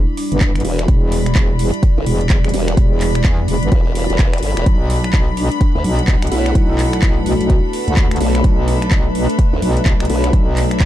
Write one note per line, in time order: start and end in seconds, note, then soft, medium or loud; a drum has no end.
0.00 4.62 G3 medium
0.00 0.16 D4 medium
0.00 10.85 D4 medium
0.00 4.62 E4 medium
0.00 4.62 D5 loud
0.00 10.85 B5 loud
0.17 0.85 D4 medium
0.17 open hi-hat loud
0.32 0.63 G1 loud
0.32 closed hi-hat medium
0.41 kick loud
0.41 clap loud
0.41 closed hi-hat medium
0.55 finger snap medium
0.55 closed hi-hat soft
0.60 closed hi-hat medium
0.65 0.87 E1 loud
0.65 open hi-hat loud
0.79 finger snap medium
0.79 closed hi-hat medium
0.88 1.34 E1 loud
0.88 kick loud
0.88 closed hi-hat medium
1.12 open hi-hat loud
1.26 finger snap medium
1.26 closed hi-hat medium
1.35 1.71 E1 loud
1.35 kick loud
1.35 clap loud
1.35 closed hi-hat medium
1.59 open hi-hat loud
1.74 closed hi-hat medium
1.83 kick loud
1.83 closed hi-hat medium
1.97 2.05 G1 loud
2.06 2.29 E1 medium
2.06 open hi-hat loud
2.21 closed hi-hat soft
2.30 2.52 E1 loud
2.30 kick loud
2.30 clap loud
2.30 closed hi-hat medium
2.44 finger snap medium
2.44 closed hi-hat soft
2.49 closed hi-hat medium
2.54 2.76 E1 loud
2.54 open hi-hat loud
2.68 finger snap medium
2.68 closed hi-hat medium
2.77 3.23 E1 loud
2.77 kick loud
2.77 closed hi-hat medium
3.01 clap medium
3.01 open hi-hat loud
3.15 finger snap medium
3.15 closed hi-hat soft
3.24 3.47 E2 loud
3.24 kick loud
3.24 clap loud
3.24 closed hi-hat medium
3.48 3.60 E1 loud
3.48 open hi-hat loud
3.63 3.70 G1 loud
3.63 closed hi-hat medium
3.72 4.08 E1 loud
3.72 kick loud
3.72 closed hi-hat medium
3.95 open hi-hat loud
4.10 4.18 E1 loud
4.10 closed hi-hat soft
4.19 4.41 E1 loud
4.19 kick loud
4.19 clap loud
4.19 closed hi-hat medium
4.33 finger snap medium
4.33 closed hi-hat soft
4.38 closed hi-hat medium
4.43 4.55 G1 loud
4.43 open hi-hat loud
4.57 4.65 E1 loud
4.57 finger snap medium
4.57 closed hi-hat medium
4.66 5.12 B1 loud
4.66 10.85 A3 medium
4.66 10.85 D4 medium
4.66 10.85 B4 medium
4.66 kick loud
4.66 closed hi-hat medium
4.89 10.85 A4 medium
4.89 open hi-hat loud
5.04 finger snap medium
5.04 closed hi-hat medium
5.13 5.49 B1 medium
5.13 kick loud
5.13 clap loud
5.13 closed hi-hat medium
5.37 5.55 D4 medium
5.37 open hi-hat loud
5.52 8.64 F#5 medium
5.52 closed hi-hat medium
5.61 kick loud
5.61 closed hi-hat medium
5.75 5.83 D2 loud
5.84 6.07 B1 loud
5.84 open hi-hat loud
5.99 closed hi-hat soft
6.08 6.30 B1 loud
6.08 kick loud
6.08 clap loud
6.08 closed hi-hat medium
6.22 finger snap medium
6.22 closed hi-hat soft
6.27 closed hi-hat medium
6.32 6.54 B1 loud
6.32 6.49 E4 medium
6.32 open hi-hat loud
6.46 finger snap medium
6.46 closed hi-hat medium
6.55 7.01 B1 loud
6.55 kick loud
6.55 closed hi-hat medium
6.70 6.84 E4 loud
6.79 clap medium
6.79 open hi-hat loud
6.93 finger snap medium
6.93 closed hi-hat medium
7.02 7.25 B1 loud
7.02 kick loud
7.02 clap loud
7.02 closed hi-hat medium
7.26 7.38 B1 loud
7.26 7.35 F#4 medium
7.26 open hi-hat loud
7.41 7.62 B1 loud
7.41 7.46 F#4 medium
7.41 closed hi-hat medium
7.50 kick loud
7.50 closed hi-hat medium
7.73 open hi-hat loud
7.88 8.19 D2 loud
7.88 closed hi-hat medium
7.97 kick loud
7.97 clap loud
7.97 closed hi-hat medium
8.11 finger snap medium
8.11 closed hi-hat soft
8.16 closed hi-hat medium
8.21 8.43 B1 loud
8.21 open hi-hat loud
8.35 finger snap medium
8.35 closed hi-hat medium
8.44 8.90 B1 loud
8.44 kick loud
8.44 closed hi-hat medium
8.49 10.85 E5 medium
8.68 open hi-hat loud
8.82 finger snap medium
8.82 closed hi-hat medium
8.91 9.27 B1 medium
8.91 kick loud
8.91 clap loud
8.91 closed hi-hat medium
9.15 open hi-hat loud
9.29 closed hi-hat medium
9.39 kick loud
9.39 closed hi-hat medium
9.53 9.61 D2 loud
9.62 9.84 B1 medium
9.62 open hi-hat loud
9.77 closed hi-hat medium
9.86 10.08 B1 loud
9.86 kick loud
9.86 clap loud
9.86 closed hi-hat medium
10.00 finger snap medium
10.00 closed hi-hat soft
10.05 closed hi-hat medium
10.10 10.32 B1 loud
10.10 open hi-hat loud
10.24 finger snap medium
10.24 closed hi-hat medium
10.33 10.79 B1 loud
10.33 kick loud
10.33 closed hi-hat medium
10.56 clap medium
10.56 open hi-hat loud
10.71 finger snap medium
10.71 closed hi-hat medium
10.80 10.85 B1 loud
10.80 kick loud
10.80 clap loud
10.80 closed hi-hat medium